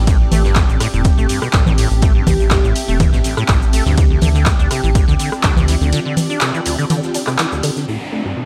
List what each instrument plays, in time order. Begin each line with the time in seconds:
Already playing: analog synth bass A1, ambient pad C4 D5 A5, analog synth pad G4
0.07 acid bass A2, kick, closed hi-hat, ride, cabasa
0.27 ambient pad G4
0.32 analog synth bass A1, acid bass A3, closed hi-hat, open hi-hat, low conga, cabasa
0.44 acid bass G2, snare, cabasa
0.55 acid bass B2, kick, snare, clap, closed hi-hat, ride, cabasa
0.69 analog synth bass A1, acid bass A1, cabasa
0.80 acid bass A2, cross-stick, closed hi-hat, open hi-hat, cabasa
0.93 analog synth bass E1, acid bass A2, cabasa
1.04 kick, closed hi-hat, ride, cabasa
1.18 analog synth bass A1, acid bass A3, cabasa
1.29 acid bass G2, closed hi-hat, open hi-hat, cabasa
1.42 acid bass B2, ambient pad E5, cross-stick, cabasa
1.53 acid bass A1, analog synth bass A1, kick, snare, clap, closed hi-hat, ride, cabasa
1.66 acid bass A2, snare, low conga, cabasa
1.78 acid bass A2, closed hi-hat, open hi-hat, cabasa
1.91 analog synth bass A1, closed hi-hat, cabasa
2.02 acid bass A3, kick, closed hi-hat, ride, cabasa
2.15 acid bass G2
2.27 analog synth bass A1, acid bass B2, vibraphone G4, kick, closed hi-hat, open hi-hat, low conga, cabasa
2.39 acid bass A1, cabasa
2.51 acid bass A2, kick, snare, clap, closed hi-hat, ride, cabasa
2.64 analog synth bass A1, acid bass A2, cabasa
2.75 closed hi-hat, open hi-hat, cabasa
2.88 analog synth bass E1, acid bass A3, cabasa
3.00 acid bass G2, kick, closed hi-hat, ride, low conga, cabasa
3.12 analog synth bass A1, acid bass B2, snare, cabasa
3.24 acid bass A1, closed hi-hat, open hi-hat, cabasa
3.37 acid bass A2, cross-stick, cabasa
3.48 analog synth bass A1, acid bass A2, kick, snare, clap, closed hi-hat, ride, cabasa
3.62 cabasa
3.73 acid bass A3, closed hi-hat, open hi-hat, cabasa
3.85 analog synth bass D2, acid bass G2, snare, cabasa
3.97 acid bass E3, ambient pad C4, kick, closed hi-hat, ride, cabasa
4.10 acid bass D2
4.21 analog synth bass D2, acid bass D3, closed hi-hat, open hi-hat, low conga, cabasa
4.27 ambient pad D5
4.35 acid bass D3, snare, cabasa
4.46 kick, snare, clap, closed hi-hat, ride, cabasa
4.51 ambient pad F4
4.59 analog synth bass D2, acid bass D4, cabasa
4.71 acid bass C3, cross-stick, closed hi-hat, open hi-hat, cabasa
4.83 analog synth bass A1, acid bass E3, cabasa
4.95 acid bass D2, kick, closed hi-hat, ride, cabasa
5.08 analog synth bass D2, acid bass D3, cabasa
5.19 acid bass D3, closed hi-hat, open hi-hat, cabasa
5.32 cross-stick, cabasa
5.43 analog synth bass D2, acid bass D4, kick, snare, clap, closed hi-hat, ride, cabasa
5.56 acid bass C3, snare, low conga, cabasa
5.68 acid bass E3, closed hi-hat, open hi-hat, cabasa
5.81 acid bass D2, analog synth bass D2, closed hi-hat, cabasa
5.93 acid bass D3, closed hi-hat, ride, cabasa
6.05 acid bass D3
6.17 closed hi-hat, open hi-hat, low conga, cabasa
6.30 acid bass D4, cabasa
6.41 acid bass C3, snare, clap, closed hi-hat, ride, cabasa
6.54 acid bass E3, cabasa
6.65 acid bass D2, closed hi-hat, open hi-hat, cabasa
6.79 acid bass D3, cabasa
6.90 acid bass D3, closed hi-hat, ride, low conga, cabasa
7.03 snare, cabasa
7.14 acid bass D4, closed hi-hat, open hi-hat, cabasa
7.27 acid bass C3, cross-stick, clap, cabasa
7.38 acid bass E3, snare, clap, closed hi-hat, ride, cabasa
7.52 acid bass D2, cabasa
7.63 acid bass D3, closed hi-hat, open hi-hat, cabasa
7.76 acid bass D3, snare, cabasa
7.88 acid bass A2, analog synth pad D4, downlifter
8.07 ambient pad E5
8.12 acid bass A3
8.25 acid bass G2
8.36 acid bass B2